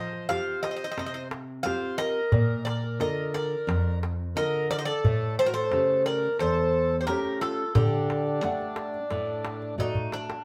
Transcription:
Already playing: nylon-string guitar F3, accordion C5, bouzouki D#5
0.12 darbuka tek
0.29 nylon-string guitar C4 F4 G4, accordion C5, bouzouki F5, darbuka tek
0.63 accordion C5, bouzouki D#5, darbuka tek
0.71 bouzouki D#5
0.76 bouzouki D#5
0.84 bouzouki D#5
0.91 bouzouki D#5
0.97 nylon-string guitar C3, bouzouki D#5, darbuka tek
1.06 bouzouki D#5
1.14 bouzouki D#5
1.31 darbuka tek
1.63 nylon-string guitar C4 F4 G4, accordion C5, bouzouki F5, darbuka tek
1.82 darbuka tek
1.98 accordion A#4, bouzouki D#5, darbuka tek
2.32 nylon-string guitar A#2, darbuka dum
2.65 accordion A#4, bouzouki D5, darbuka tek
2.84 darbuka tek
2.99 nylon-string guitar D3 F4 A#4, accordion A#4, bouzouki D#5, darbuka tek
3.34 accordion A#4, bouzouki D5, darbuka tek
3.67 nylon-string guitar F2, darbuka tek
4.03 darbuka tek
4.36 nylon-string guitar D3 F4 A#4, accordion A#4, bouzouki D#5, darbuka tek
4.54 darbuka tek
4.71 accordion A#4, bouzouki D5, darbuka tek
4.78 accordion C5, bouzouki D#5
4.85 accordion A4, bouzouki D5
5.05 nylon-string guitar A2, darbuka dum
5.39 accordion A4, bouzouki C5
5.46 accordion F#4, bouzouki A#4
5.53 accordion A4, bouzouki C5, darbuka tek
5.72 nylon-string guitar C#3 A3 G4, darbuka tek
6.06 accordion A#4, bouzouki D5, darbuka tek
6.39 nylon-string guitar E2, accordion A4, bouzouki C5, darbuka tek
7.01 accordion G4, bouzouki C5
7.07 nylon-string guitar A3 C#4 G4, accordion G4, bouzouki A#4, darbuka tek
7.25 darbuka tek
7.40 accordion F4, bouzouki A4, darbuka tek
7.75 nylon-string guitar D3, accordion D4, bouzouki G4, darbuka dum
8.10 darbuka tek
8.27 darbuka tek
8.43 nylon-string guitar A3 D4 F#5, darbuka tek
8.60 darbuka tek
8.76 darbuka tek
8.94 darbuka tek
9.11 nylon-string guitar A2, darbuka tek
9.45 darbuka tek
9.62 darbuka tek
9.78 nylon-string guitar A3 F#4 D5, bouzouki D#4, darbuka dum
9.95 darbuka dum
10.12 bouzouki D4, darbuka tek
10.30 darbuka tek

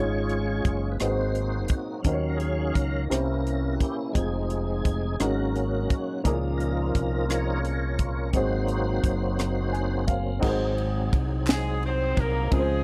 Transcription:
Already playing: fingered electric bass G#1, upright piano G#2 G#3 C#4 F4 G#4 C#5, french horn section F3 G#3 C#4 F4, tonewheel organ G#3 C#4 F4 C#5
0.00 tonewheel organ G#4
0.29 closed hi-hat
0.65 fingered electric bass F#1, kick, closed hi-hat
0.92 tonewheel organ B4
0.99 fingered electric bass G#1, upright piano G#2 C4 D#4 F#4 G#4 B4, french horn section F#3 C4 D#4, tonewheel organ A#3 C4 D#4 F#4 C5, cross-stick, closed hi-hat
1.08 upright piano C5
1.35 closed hi-hat
1.68 kick, closed hi-hat
2.02 fingered electric bass D#2, upright piano D#3 C#4 D#4 F#4, tonewheel organ F#3 C#4 F5, french horn section C#4, kick, closed hi-hat
2.06 french horn section A#3, upright piano A#4 C5
2.13 upright piano C#5
2.30 tonewheel organ A#4
2.37 tonewheel organ G#4, closed hi-hat
2.74 fingered electric bass C#2, tonewheel organ A#4, kick, closed hi-hat
3.08 fingered electric bass C2, french horn section C3 E3 C#4, upright piano C3 C#4 E4 G4 A#4 C5, tonewheel organ A#3 C#4 E4 A#4, cross-stick, closed hi-hat
3.47 closed hi-hat
3.73 tonewheel organ F#4
3.80 tonewheel organ G4, kick, closed hi-hat
4.13 fingered electric bass F1, french horn section F3 G#3 D#4, tonewheel organ G#3 C4 D#4 G#4, upright piano C4 D#4 F4 G#4 C5, kick, closed hi-hat
4.50 closed hi-hat
4.85 fingered electric bass F1, kick, closed hi-hat
5.20 fingered electric bass G#1, upright piano G#2 C#4 D#4 F#4 G#4 A#4, french horn section F#3 A#3 C#4, tonewheel organ F#3 A#3 C#4 F#4 A#4, cross-stick, closed hi-hat
5.56 closed hi-hat
5.90 kick, closed hi-hat
6.24 fingered electric bass C#2, upright piano A#2 A#3 C#4 E4 G#4 A#4, french horn section F3 A#3, tonewheel organ A#3 D#4, kick, closed hi-hat
6.32 upright piano F4
6.58 tonewheel organ F4 A#4, closed hi-hat
6.95 fingered electric bass C2, kick, closed hi-hat
7.29 tonewheel organ F3 A#3 D#4 F4 A#4 C#5, cross-stick, closed hi-hat
7.65 closed hi-hat
7.99 kick, closed hi-hat
8.32 fingered electric bass G#1, upright piano G#2 C4 D#4 F#4 G#4 C5, french horn section F#3 C4 D#4, tonewheel organ F#3 A#3 C4 D#4 F#4 C5, kick, closed hi-hat
8.68 closed hi-hat
9.03 fingered electric bass F#1, kick, closed hi-hat
9.39 cross-stick, closed hi-hat
9.72 upright piano G#5, closed hi-hat
10.07 upright piano F5, kick, closed hi-hat
10.40 fingered electric bass G#1, upright piano G#2 C4 D#4 F#4 G#4 A#4, kick, crash
10.44 tonewheel organ F#3 C4 D#4 G#4
10.48 upright piano C5
10.78 ride
11.13 fingered electric bass C2, kick, ride
11.47 snare, clap, ride
11.51 horn section G#3 G#4
11.83 horn section C4 C5, ride
12.17 fingered electric bass C2, horn section A#3 A#4, kick, ride
12.50 fingered electric bass C#2, upright piano C#3 G#3 C4 F4 G#4 A#4, tonewheel organ C#3 F3 C4 G4, horn section G#3 F4 G#4, kick, ride
12.54 horn section C4
12.58 tonewheel organ G#4, upright piano C5

